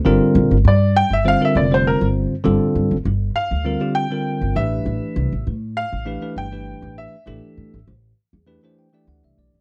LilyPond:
<<
  \new Staff \with { instrumentName = "Grand piano" } { \time 4/4 \key a \phrygian \tempo 4 = 100 r4 d''8 g''16 e''16 f''16 e''16 d''16 c''16 bes'8 r8 | r4. f''4 g''4 e''8~ | e''4 r8 f''4 g''4 e''8~ | e''4 r2. | }
  \new Staff \with { instrumentName = "Tine electric piano" } { \time 4/4 \key a \phrygian << { r1 | r1 | r1 | r2 r8 g''8 fis''16 e''16 d''8 | } \\ { <d g c' f' bes'>8. r16 <f' c''>16 r8. <d g c' f' c''>16 <d g c' f' bes'>8 <d g c' f' c''>4 r16 | <d g c' f' a'>8. r16 <f' a'>16 r8. <d g c' f' bes'>16 <d g c' f' g'>8 <d g c' f' bes'>8. <e a d' g' b'>8~ | <e a d' g' b'>8. r16 <g' b'>16 r8. <e a d' g' b'>16 <e a d' g' b'>8 <e a d' g' b'>4 r16 | <e a d' g' a'>8. r16 <g' c''>16 r8. <e a d' g' b'>16 <e a d' g' c''>8 <e a d' g' d''>4 r16 | } >> }
  \new Staff \with { instrumentName = "Upright bass" } { \clef bass \time 4/4 \key a \phrygian g,,16 r16 bes,,16 g,,16 g,8. g,,8 r16 f,,8. g,,8 r16 | g,,16 r16 g,16 g,,16 g,,8 r16 d,8 r4 g,,16 a,,8 | a,,16 r16 c,16 a,,16 a,8. a,,8 r16 g,,8. a,,8 r16 | a,,16 r16 a,16 a,,16 a,,8 r16 e,8 r8. d,16 c,16 b,,16 a,,16 | }
>>